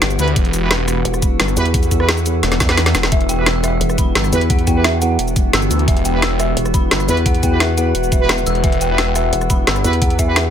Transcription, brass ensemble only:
0, 0, Header, 1, 2, 480
1, 0, Start_track
1, 0, Key_signature, 1, "minor"
1, 0, Tempo, 344828
1, 504, Time_signature, 4, 2, 24, 8
1, 14619, End_track
2, 0, Start_track
2, 0, Title_t, "Brass ensemble"
2, 0, Program_c, 0, 61
2, 264, Note_on_c, 0, 64, 100
2, 264, Note_on_c, 0, 66, 92
2, 264, Note_on_c, 0, 67, 89
2, 264, Note_on_c, 0, 71, 111
2, 377, Note_off_c, 0, 64, 0
2, 377, Note_off_c, 0, 66, 0
2, 378, Note_off_c, 0, 67, 0
2, 378, Note_off_c, 0, 71, 0
2, 863, Note_on_c, 0, 66, 80
2, 863, Note_on_c, 0, 71, 94
2, 864, Note_on_c, 0, 64, 87
2, 864, Note_on_c, 0, 67, 80
2, 977, Note_off_c, 0, 64, 0
2, 977, Note_off_c, 0, 66, 0
2, 977, Note_off_c, 0, 67, 0
2, 977, Note_off_c, 0, 71, 0
2, 2183, Note_on_c, 0, 64, 97
2, 2183, Note_on_c, 0, 66, 94
2, 2183, Note_on_c, 0, 67, 92
2, 2183, Note_on_c, 0, 71, 110
2, 2297, Note_off_c, 0, 64, 0
2, 2297, Note_off_c, 0, 66, 0
2, 2297, Note_off_c, 0, 67, 0
2, 2297, Note_off_c, 0, 71, 0
2, 2783, Note_on_c, 0, 64, 85
2, 2783, Note_on_c, 0, 66, 79
2, 2783, Note_on_c, 0, 67, 79
2, 2783, Note_on_c, 0, 71, 99
2, 2897, Note_off_c, 0, 64, 0
2, 2897, Note_off_c, 0, 66, 0
2, 2897, Note_off_c, 0, 67, 0
2, 2897, Note_off_c, 0, 71, 0
2, 3742, Note_on_c, 0, 66, 92
2, 3742, Note_on_c, 0, 67, 93
2, 3742, Note_on_c, 0, 71, 110
2, 3743, Note_on_c, 0, 64, 99
2, 3857, Note_off_c, 0, 64, 0
2, 3857, Note_off_c, 0, 66, 0
2, 3857, Note_off_c, 0, 67, 0
2, 3857, Note_off_c, 0, 71, 0
2, 4702, Note_on_c, 0, 64, 87
2, 4703, Note_on_c, 0, 66, 77
2, 4703, Note_on_c, 0, 67, 77
2, 4703, Note_on_c, 0, 71, 96
2, 4817, Note_off_c, 0, 64, 0
2, 4817, Note_off_c, 0, 66, 0
2, 4817, Note_off_c, 0, 67, 0
2, 4817, Note_off_c, 0, 71, 0
2, 6023, Note_on_c, 0, 64, 98
2, 6023, Note_on_c, 0, 66, 93
2, 6023, Note_on_c, 0, 67, 92
2, 6023, Note_on_c, 0, 71, 111
2, 6137, Note_off_c, 0, 64, 0
2, 6137, Note_off_c, 0, 66, 0
2, 6137, Note_off_c, 0, 67, 0
2, 6137, Note_off_c, 0, 71, 0
2, 6622, Note_on_c, 0, 66, 78
2, 6623, Note_on_c, 0, 64, 88
2, 6623, Note_on_c, 0, 67, 79
2, 6623, Note_on_c, 0, 71, 96
2, 6737, Note_off_c, 0, 64, 0
2, 6737, Note_off_c, 0, 66, 0
2, 6737, Note_off_c, 0, 67, 0
2, 6737, Note_off_c, 0, 71, 0
2, 8543, Note_on_c, 0, 64, 85
2, 8543, Note_on_c, 0, 71, 97
2, 8544, Note_on_c, 0, 66, 77
2, 8544, Note_on_c, 0, 67, 82
2, 8657, Note_off_c, 0, 64, 0
2, 8657, Note_off_c, 0, 66, 0
2, 8657, Note_off_c, 0, 67, 0
2, 8657, Note_off_c, 0, 71, 0
2, 9862, Note_on_c, 0, 64, 98
2, 9862, Note_on_c, 0, 66, 94
2, 9862, Note_on_c, 0, 71, 110
2, 9863, Note_on_c, 0, 67, 93
2, 9976, Note_off_c, 0, 64, 0
2, 9977, Note_off_c, 0, 66, 0
2, 9977, Note_off_c, 0, 67, 0
2, 9977, Note_off_c, 0, 71, 0
2, 10463, Note_on_c, 0, 64, 85
2, 10463, Note_on_c, 0, 66, 80
2, 10463, Note_on_c, 0, 67, 78
2, 10463, Note_on_c, 0, 71, 96
2, 10577, Note_off_c, 0, 64, 0
2, 10577, Note_off_c, 0, 66, 0
2, 10577, Note_off_c, 0, 67, 0
2, 10577, Note_off_c, 0, 71, 0
2, 11422, Note_on_c, 0, 64, 101
2, 11422, Note_on_c, 0, 66, 92
2, 11422, Note_on_c, 0, 67, 91
2, 11422, Note_on_c, 0, 71, 111
2, 11536, Note_off_c, 0, 64, 0
2, 11536, Note_off_c, 0, 66, 0
2, 11536, Note_off_c, 0, 67, 0
2, 11536, Note_off_c, 0, 71, 0
2, 12383, Note_on_c, 0, 64, 86
2, 12383, Note_on_c, 0, 66, 80
2, 12383, Note_on_c, 0, 67, 80
2, 12383, Note_on_c, 0, 71, 95
2, 12497, Note_off_c, 0, 64, 0
2, 12497, Note_off_c, 0, 66, 0
2, 12497, Note_off_c, 0, 67, 0
2, 12497, Note_off_c, 0, 71, 0
2, 13703, Note_on_c, 0, 67, 92
2, 13704, Note_on_c, 0, 64, 102
2, 13704, Note_on_c, 0, 66, 91
2, 13704, Note_on_c, 0, 71, 109
2, 13817, Note_off_c, 0, 64, 0
2, 13817, Note_off_c, 0, 66, 0
2, 13817, Note_off_c, 0, 67, 0
2, 13817, Note_off_c, 0, 71, 0
2, 14303, Note_on_c, 0, 64, 84
2, 14303, Note_on_c, 0, 66, 80
2, 14303, Note_on_c, 0, 71, 96
2, 14304, Note_on_c, 0, 67, 82
2, 14417, Note_off_c, 0, 64, 0
2, 14417, Note_off_c, 0, 66, 0
2, 14417, Note_off_c, 0, 67, 0
2, 14417, Note_off_c, 0, 71, 0
2, 14619, End_track
0, 0, End_of_file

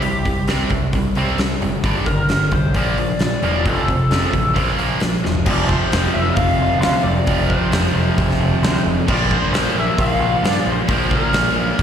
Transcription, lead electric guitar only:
0, 0, Header, 1, 2, 480
1, 0, Start_track
1, 0, Tempo, 452489
1, 24, Time_signature, 4, 2, 24, 8
1, 12545, End_track
2, 0, Start_track
2, 0, Title_t, "Lead electric guitar"
2, 0, Program_c, 0, 29
2, 25, Note_on_c, 0, 67, 75
2, 471, Note_off_c, 0, 67, 0
2, 2190, Note_on_c, 0, 70, 80
2, 2681, Note_on_c, 0, 72, 84
2, 2683, Note_off_c, 0, 70, 0
2, 2898, Note_off_c, 0, 72, 0
2, 2929, Note_on_c, 0, 74, 99
2, 3409, Note_off_c, 0, 74, 0
2, 3421, Note_on_c, 0, 74, 90
2, 3899, Note_off_c, 0, 74, 0
2, 3899, Note_on_c, 0, 69, 78
2, 4801, Note_off_c, 0, 69, 0
2, 5820, Note_on_c, 0, 74, 100
2, 6021, Note_off_c, 0, 74, 0
2, 6025, Note_on_c, 0, 72, 83
2, 6513, Note_on_c, 0, 76, 101
2, 6521, Note_off_c, 0, 72, 0
2, 6736, Note_off_c, 0, 76, 0
2, 6740, Note_on_c, 0, 77, 103
2, 7193, Note_off_c, 0, 77, 0
2, 7206, Note_on_c, 0, 77, 103
2, 7458, Note_on_c, 0, 74, 98
2, 7463, Note_off_c, 0, 77, 0
2, 7940, Note_off_c, 0, 74, 0
2, 7944, Note_on_c, 0, 72, 77
2, 9341, Note_off_c, 0, 72, 0
2, 9668, Note_on_c, 0, 74, 106
2, 9893, Note_off_c, 0, 74, 0
2, 9907, Note_on_c, 0, 72, 90
2, 10334, Note_off_c, 0, 72, 0
2, 10391, Note_on_c, 0, 76, 107
2, 10614, Note_off_c, 0, 76, 0
2, 10625, Note_on_c, 0, 77, 109
2, 11052, Note_off_c, 0, 77, 0
2, 11119, Note_on_c, 0, 74, 94
2, 11317, Note_off_c, 0, 74, 0
2, 11346, Note_on_c, 0, 72, 97
2, 11819, Note_off_c, 0, 72, 0
2, 11833, Note_on_c, 0, 70, 78
2, 12545, Note_off_c, 0, 70, 0
2, 12545, End_track
0, 0, End_of_file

